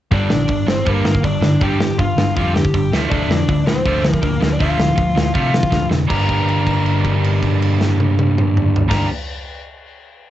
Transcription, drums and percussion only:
0.12 kick, open hi-hat
0.30 snare
0.48 kick, open hi-hat
0.68 snare
0.86 kick, open hi-hat
1.05 snare
1.15 kick
1.24 kick, open hi-hat
1.43 snare
1.61 kick, open hi-hat
1.81 snare
1.99 kick, open hi-hat
2.18 snare
2.37 kick, open hi-hat
2.56 snare
2.65 kick
2.74 kick, open hi-hat
2.93 snare
3.12 kick, open hi-hat
3.31 snare
3.49 kick, open hi-hat
3.67 snare
3.86 kick, open hi-hat
4.05 snare
4.14 kick
4.23 kick, open hi-hat
4.42 snare
4.60 kick, open hi-hat
4.79 snare
4.98 kick, open hi-hat
5.17 snare
5.35 kick, open hi-hat
5.54 snare
5.63 kick
5.72 kick, snare
5.91 snare
6.10 kick, crash
6.29 kick, crash
6.48 crash
6.67 kick, crash
6.86 crash
7.05 kick, crash
7.24 crash
7.43 kick, crash
7.62 crash
7.81 snare
8.00 high tom
8.19 high tom
8.38 mid tom
8.57 mid tom
8.76 floor tom
8.91 kick, snare, crash

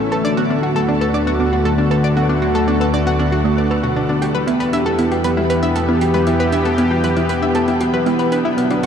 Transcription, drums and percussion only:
4.22 closed hi-hat
4.48 closed hi-hat
4.60 closed hi-hat
4.73 closed hi-hat
4.99 closed hi-hat
5.12 closed hi-hat
5.24 closed hi-hat
5.37 high conga
5.50 closed hi-hat
5.63 closed hi-hat
5.76 closed hi-hat
6.01 closed hi-hat
6.14 closed hi-hat, high conga
6.27 closed hi-hat
6.52 closed hi-hat
6.65 closed hi-hat
6.78 closed hi-hat
7.04 closed hi-hat
7.17 closed hi-hat
7.29 closed hi-hat
7.55 closed hi-hat
7.68 closed hi-hat
7.81 closed hi-hat
8.06 closed hi-hat, high conga
8.19 closed hi-hat
8.32 closed hi-hat
8.58 closed hi-hat
8.71 closed hi-hat

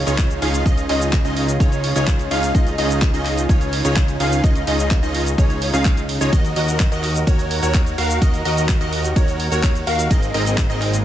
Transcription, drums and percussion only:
0.07 closed hi-hat, cabasa
0.18 kick, clap, closed hi-hat, cabasa
0.30 closed hi-hat, cabasa
0.42 open hi-hat
0.54 closed hi-hat, cabasa
0.66 kick, closed hi-hat, cabasa
0.78 closed hi-hat, cabasa
0.89 open hi-hat
1.02 cabasa
1.13 kick, clap, closed hi-hat, cabasa
1.25 closed hi-hat, cabasa
1.37 open hi-hat
1.48 closed hi-hat, cabasa
1.60 kick, closed hi-hat, cabasa
1.72 closed hi-hat, cabasa
1.84 open hi-hat
1.96 closed hi-hat, cabasa
2.07 kick, clap, closed hi-hat, cabasa
2.19 closed hi-hat, cabasa
2.31 open hi-hat
2.43 closed hi-hat, cabasa
2.55 kick, closed hi-hat, cabasa
2.67 closed hi-hat, cabasa
2.78 open hi-hat
2.90 closed hi-hat, cabasa
3.02 kick, clap, closed hi-hat, cabasa
3.14 closed hi-hat, cabasa
3.25 clap, open hi-hat
3.37 closed hi-hat, cabasa
3.49 kick, closed hi-hat, cabasa
3.61 closed hi-hat, cabasa
3.73 open hi-hat
3.85 closed hi-hat, cabasa
3.96 kick, clap, closed hi-hat, cabasa
4.08 closed hi-hat, cabasa
4.20 open hi-hat
4.32 closed hi-hat, cabasa
4.44 kick, closed hi-hat, cabasa
4.55 closed hi-hat, cabasa
4.67 open hi-hat
4.79 closed hi-hat, cabasa
4.91 kick, clap, closed hi-hat, cabasa
5.03 closed hi-hat, cabasa
5.14 open hi-hat
5.26 closed hi-hat, cabasa
5.38 kick, closed hi-hat, cabasa
5.50 closed hi-hat, cabasa
5.62 open hi-hat
5.74 closed hi-hat, cabasa
5.85 kick, clap, closed hi-hat, cabasa
5.97 closed hi-hat, cabasa
6.09 open hi-hat
6.21 closed hi-hat, cabasa
6.33 kick, closed hi-hat, ride, cabasa
6.45 closed hi-hat, cabasa
6.56 open hi-hat
6.68 closed hi-hat, cabasa
6.80 kick, clap, closed hi-hat, ride, cabasa
6.92 closed hi-hat, cabasa
7.03 clap, open hi-hat
7.15 closed hi-hat, cabasa
7.27 kick, closed hi-hat, ride, cabasa
7.39 closed hi-hat, cabasa
7.51 open hi-hat
7.63 closed hi-hat, cabasa
7.74 kick, clap, closed hi-hat, ride, cabasa
7.86 closed hi-hat, cabasa
7.98 open hi-hat
8.10 closed hi-hat, cabasa
8.22 kick, closed hi-hat, ride, cabasa
8.34 closed hi-hat, cabasa
8.45 open hi-hat
8.57 closed hi-hat, cabasa
8.69 kick, clap, closed hi-hat, ride, cabasa
8.81 closed hi-hat, cabasa
8.93 open hi-hat
9.04 closed hi-hat, cabasa
9.16 kick, closed hi-hat, ride, cabasa
9.28 closed hi-hat, cabasa
9.40 open hi-hat
9.52 closed hi-hat, cabasa
9.63 kick, clap, closed hi-hat, ride, cabasa
9.75 closed hi-hat, cabasa
9.87 open hi-hat
9.99 closed hi-hat, cabasa
10.11 kick, closed hi-hat, ride, cabasa
10.23 closed hi-hat, cabasa
10.34 open hi-hat
10.46 closed hi-hat, cabasa
10.58 kick, clap, closed hi-hat, ride, cabasa
10.70 closed hi-hat, cabasa
10.81 clap, open hi-hat
10.93 closed hi-hat, cabasa

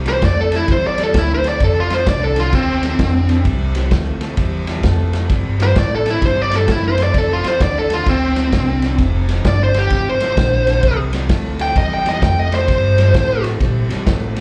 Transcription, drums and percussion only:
0.06 snare, ride
0.22 kick, snare, ride
0.52 snare, ride
0.68 kick, snare, ride
0.98 snare, ride
1.14 kick, snare, ride
1.44 snare, ride
1.60 kick, snare, ride
1.90 snare, ride
2.06 kick, snare, ride
2.36 snare, ride
2.53 kick, snare, ride
2.83 snare, ride
2.99 kick, snare, ride
3.29 snare, ride
3.45 kick, snare, ride
3.75 snare, ride
3.91 kick, snare, ride
4.21 snare, ride
4.37 kick, snare, ride
4.67 snare, ride
4.83 kick, snare, ride
5.13 snare, ride
5.30 kick, snare, ride
5.60 snare, ride
5.76 kick, snare, ride
6.06 snare, ride
6.22 kick, snare, ride
6.51 snare, ride
6.68 kick, snare, ride
6.98 snare, ride
7.14 kick, snare, ride
7.44 snare, ride
7.60 kick, snare, ride
7.90 snare, ride
8.06 kick, snare, ride
8.36 snare, ride
8.52 kick, snare, ride
8.82 snare, ride
8.98 kick, snare, ride
9.29 snare, ride
9.45 kick, snare, ride
9.74 snare, ride
9.90 kick, snare, ride
10.20 snare, ride
10.37 kick, snare, ride
10.67 snare, ride
10.83 kick, snare, ride
11.13 snare, ride
11.29 kick, snare, ride
11.59 snare, ride
11.76 kick, snare, ride
12.06 snare, ride
12.22 kick, snare, ride
12.52 snare, ride
12.68 kick, snare, ride
12.98 snare, ride
13.14 kick, snare, ride
13.44 snare, ride
13.60 kick, snare, ride
13.90 snare, ride
14.07 kick, snare, ride
14.36 snare, ride

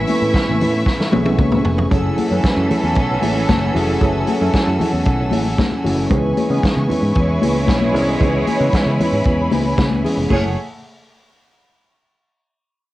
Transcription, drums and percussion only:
0.07 open hi-hat, high conga
0.34 kick, snare, closed hi-hat
0.48 high conga
0.61 open hi-hat, low conga
0.86 kick, snare, muted conga
1.00 snare
1.12 high tom, muted conga, high conga
1.25 high tom
1.38 kick, mid tom, high conga
1.52 mid tom, high conga
1.65 floor tom, low conga
1.78 floor tom
1.91 kick, closed hi-hat, muted conga
2.17 open hi-hat, muted conga, high conga
2.44 kick, snare, closed hi-hat
2.70 open hi-hat, low conga
2.95 kick, closed hi-hat, muted conga
3.22 open hi-hat, high conga
3.49 kick, snare, closed hi-hat, high conga
3.62 high conga
3.74 open hi-hat, muted conga, low conga
4.01 kick, closed hi-hat
4.27 open hi-hat, high conga
4.53 kick, snare, closed hi-hat
4.80 open hi-hat, muted conga, low conga
5.05 kick, closed hi-hat, muted conga
5.31 open hi-hat, muted conga, high conga
5.59 kick, snare, closed hi-hat, muted conga, high conga
5.72 high conga
5.85 open hi-hat, low conga
6.11 kick, closed hi-hat, muted conga
6.37 open hi-hat, muted conga, high conga
6.63 kick, snare, closed hi-hat
6.90 open hi-hat, muted conga, low conga
7.15 kick, closed hi-hat
7.42 open hi-hat, high conga
7.67 kick, snare, closed hi-hat, high conga
7.81 high conga
7.94 open hi-hat, muted conga, low conga
8.21 kick, closed hi-hat
8.47 open hi-hat, muted conga, high conga
8.73 kick, snare, closed hi-hat, muted conga
9.00 open hi-hat, muted conga, low conga
9.24 kick, closed hi-hat, muted conga
9.51 open hi-hat, muted conga, high conga
9.78 kick, snare, closed hi-hat, muted conga, high conga
9.91 high conga
10.04 open hi-hat, muted conga, low conga
10.30 kick, crash, high conga

